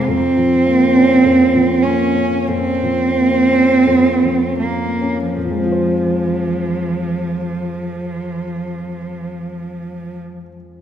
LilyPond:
<<
  \new Staff \with { instrumentName = "Cello" } { \time 4/4 \key f \minor \tempo 4 = 44 c'4. des'8 c'4. bes8 | f1 | }
  \new Staff \with { instrumentName = "Grand piano" } { \time 4/4 \key f \minor f,16 f16 bes16 des'16 f,16 f16 bes16 des'16 f,16 f16 bes16 des'16 f,16 f16 bes16 des'16 | <f, f aes c' f' c''>1 | }
>>